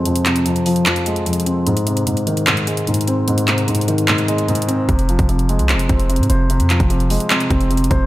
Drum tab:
HH |x--x--x--x--x--x--o--x--x--x--x--x--x-x-x-x-----|x--x--x--x--x--x--x--x--x--x--x--x--x-x-x-x-----|x--x--x--x--x-x-x-x--x--x--x--x--x--x-x-x-x-----|x--x--x--x--x--x--x--x--x--x--x--x--x-x-x-x-----|
CP |------x-----------------x-----------------------|------------------------x-----------------------|------x-----------------x-----------------------|------------------------x-----------------------|
BD |------------------------------------------------|------------------------------------------------|------------------------------------------------|o--------o--------------------o-----------------|

HH |x--x--x--x--x--x--o--x--x--x--x--x--x-x-x-x-----|
CP |------x-----------------x-----------------------|
BD |---------o--------------------o-----------o-----|